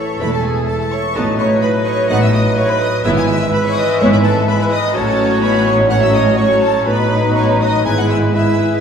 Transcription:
Already playing: E3 A3 E4 A4 C#5 E5 C#6
0.19 E1 E2 A3 E4 B4 B5
0.31 A4 A5
0.42 G#4 G#5
0.66 A3 E4 A4 A5
0.79 A4 A5
0.91 C#5 C#6
1.15 A1 A2 F#3 A3 B3 D#4 A4 B4 D#5 A5
1.38 C#5 C#6
1.62 A3 D#4 B4 B5
1.85 C#5 C#6
2.09 A1 A2 A3 B3 D#4 B4 F#5 F#6
2.22 E5 E6
2.33 D#5 D#6
2.56 C#5 C#6
2.68 B4 B5
2.80 D#5 D#6
3.04 G#1 G#2 E3 G#3 B3 E4 B4 E5 E6
3.16 G#5 G#6
3.27 E5 E6
3.52 G#3 E4 B4 B5
3.64 C#5 C#6
3.76 D#5 D#6
3.99 G#1 G#2 B3 E4 C#5 C#6
4.12 B4 B5
4.23 A4 A5
4.47 G#3 E4 B4 B5
4.60 B4 B5
4.71 D#4 D#5 D#6
4.94 A1 A2 F#3 C#4 F#4 A4 C#5 A5
5.42 B3 D#4 B4 B5
5.65 C#5 C#6
5.89 F#3 A3 C#4 F#4 C#5 F#5 F#6
6.00 E5 E6
6.13 D#5 D#6
6.37 F#3 A3 C#4 F#4 C#5 C#6
6.62 A4 A5
6.86 A1 A2 F#3 B3 D#4 B4 B5
7.35 C#5 C#6
7.61 D#5 D#6
7.85 G#1 G#2 G#3 B3 E4 B4 G#5 G#6
7.97 F#5 F#6
8.09 E5 E6
8.33 G#3 E4 G#4 B4 E5 E6

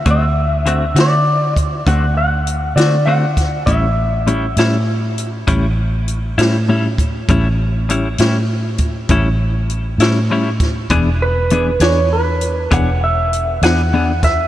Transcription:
Already playing: E5
0.06 D2 D3 A3 C4 F#4, kick, closed hi-hat
0.11 E5
0.66 D3 A3 C4 F#4, closed hi-hat
0.95 D3 A3 C4 F#4, closed hi-hat
0.99 D5, snare
1.56 kick, closed hi-hat
1.87 D2 D3 A3 C4 F#4 F#5, kick, closed hi-hat
2.17 F#5
2.47 closed hi-hat
2.76 D3 A3 C4 F#4 D5, closed hi-hat
2.80 snare
3.06 D3 A3 C4 F#4 F#5
3.37 kick, snare, closed hi-hat
3.66 A1 A2 G3 C#4 E4 E5, kick, closed hi-hat
4.27 A2 G3 C#4 E4, closed hi-hat
4.57 A2 G3 C#4 E4, snare, closed hi-hat
5.18 closed hi-hat
5.47 A1 A2 G3 C#4 E4, kick, closed hi-hat
6.08 closed hi-hat
6.38 A2 G3 C#4 E4, snare, closed hi-hat
6.68 A2 G3 C#4 E4
6.98 kick, closed hi-hat
7.28 A1 A2 G3 C#4 E4, kick, closed hi-hat
7.89 A2 G3 C#4 E4, closed hi-hat
8.18 A2 G3 C#4 E4, snare, closed hi-hat
8.78 kick, closed hi-hat
9.09 A1 A2 G3 C#4 E4, kick, closed hi-hat
9.70 closed hi-hat
9.98 A2 C#4 E4, snare, closed hi-hat
10.02 G3
10.30 A2 G3 C#4 E4
10.60 kick, snare, closed hi-hat
10.90 E1 E3 B3 D4 G#4, kick, closed hi-hat
11.22 B4
11.50 E3 B3 D4 G#4, closed hi-hat
11.80 E2 B3 D4 G#4 C#5, snare, closed hi-hat
12.13 B4
12.41 closed hi-hat
12.71 E1 E3 B3 D4 G#4 F#5, kick, closed hi-hat
13.04 E5
13.33 closed hi-hat
13.62 E2 B3 D4 G#4 F#5, snare, closed hi-hat
13.93 E3 B3 D4 G#4
14.23 E5, kick, snare, closed hi-hat

